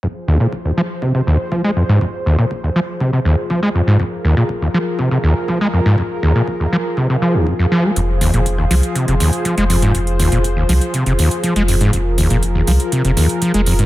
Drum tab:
HH |----------------|----------------|----------------|----------------|
BD |o---o---o---o---|o---o---o---o---|o---o---o---o---|o---o---o---o---|

HH |x-oxx-oxxxoxxxox|xxoxx-oxxxoxxxox|x-oxx-oxxxoxxxox|
BD |o---o---o---o---|o---o---o---o---|o---o---o---o---|